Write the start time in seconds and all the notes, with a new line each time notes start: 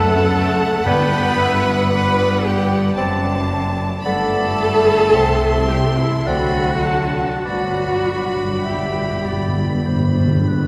Already playing: F#1 F#2 A3 A4 F#5 A5
0.86 G1 G2 B3 B4 D5 G5 B5
1.39 E5
1.91 B3 B4 D5 B5
2.44 G3 G4 G5
2.97 F#1 F#2 C4 D5 A5
4.03 G1 G2 A3 B3 A4 D5 A5 B5
5.13 C2 C3 C4 E5 C6
5.69 G3 G4 G5
5.97 E3 E4 E5
6.24 D2 D3 F#3 C4 F#4 D5 F#5 B5
6.28 F#5
6.85 A5
7.44 G1 G2 F#3 B3 F#4 D5 F#5 B5
7.55 G2
7.63 G2
7.71 G2
7.79 G2
7.88 G2
7.95 G2
8.03 G2
8.11 G2
8.20 G2
8.28 G2
8.36 G2
8.44 G2
8.53 G2
8.61 G2 E5 G5
8.66 G2 G3 G4 G5
8.78 G2
8.86 G2
8.94 G2
9.02 G2
9.10 G2
9.18 G2
9.25 G2 D5
9.33 G2
9.41 G2
9.48 G2
9.56 G2
9.64 G2
9.72 G2
9.80 G2
9.86 G2 C5
9.95 G2
10.03 G2
10.12 G2
10.20 G2
10.27 G2
10.36 G2
10.45 G2 B4
10.53 G2
10.62 G2